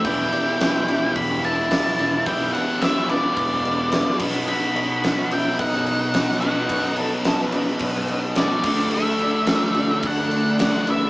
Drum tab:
CC |xxxxxxxx|xxxxxxxx|xxxxxxxx|xxxxxxxx|
SD |--o---o-|--o---o-|--o---o-|--o---o-|
BD |o---o---|o---o--o|----o---|o---o--o|

CC |xxxxxxxx|
SD |--o---o-|
BD |----o---|